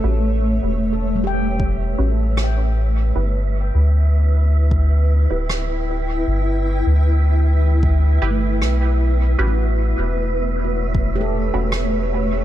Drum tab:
SD |------r-|------r-|------r-|------r-|
BD |----o---|----o---|----o---|----o---|